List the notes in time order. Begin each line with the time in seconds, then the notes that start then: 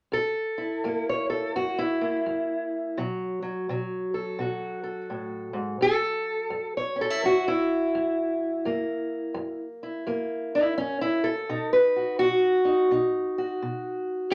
0.12 F#2 A4
0.58 E4
0.84 F#2 A#3
1.09 C#5
1.30 A4
1.56 F#2 F#4
1.78 E4
2.01 A#3
2.26 F#2
2.97 B2 F#3
3.42 F#3
3.69 B2 F#3
4.14 A4
4.39 B2 F#4
4.84 A4
5.10 A2
5.53 G#2
5.81 F#2 A4
6.50 F#2
6.77 C#5
6.96 C#4
7.01 A4
7.10 E4
7.24 F#2 F#4
7.48 E4
7.95 F#2
8.65 F#2 A#3
9.34 F#2
9.83 E4
10.07 F#2 A#3
10.55 E4
10.78 F#2 C#4
11.01 E4
11.24 A4
11.49 B2 D#4
11.73 B4
11.96 F#4
12.19 B2 F#4
12.65 D#4
12.91 B2 D#4
13.38 F#4
13.62 B2
14.30 C#4